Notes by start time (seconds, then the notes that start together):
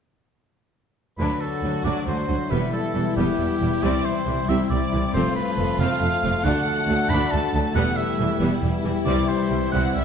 1.18 D2 D3 F#3 D4 F#4 B4
1.41 D4 A4
1.63 D2 F#3
1.84 D2 F#3 D4 D5
2.07 D2 F#3 A3 C5
2.28 D2 F#3 D4
2.50 E1 E2 E3 G3 B3 E4 B4
2.73 G3 A4
2.95 E1 E2 E3 G3 E4
3.17 E1 E2 G3 B3 G4
3.39 E1 E2 G3 E4
3.61 E1 E2 E3 G3
3.83 C2 C3 G3 C4 D5
4.05 C4 C5
4.27 C2 E3 G3
4.48 C2 G3 C4 E5
4.70 C2 G3 D5
4.92 C2 E3 G3 C4
5.13 F1 F2 F3 A3 C4 F4 A4 C5
5.36 A3 B4
5.58 F1 F2 F3 A3 F4
5.80 F1 F2 A3 C4 F5
6.01 F1 F2 A3 F4
6.23 F1 F2 F3 A3
6.44 D2 D3 A3 D4 F#4 A4 F#5
6.67 D4
6.88 D2 F#3 A3
7.10 D2 A3 D4 B5
7.31 D2 A3 A5
7.54 D2 F#3 A3 D4
7.75 E1 E2 E3 G3 B3 E4 G4 F#5
7.97 G3 E5
8.19 E1 E2 E3 G3 E4
8.41 E1 E2 G3 B3
8.62 E1 E2 G3 E4
8.84 E1 E2 E3 G3
9.06 C2 C3 G3 C4 D5
9.28 C4 C5
9.50 C2 E3 G3
9.72 C2 G3 C4 F#5
9.95 C2 G3 E5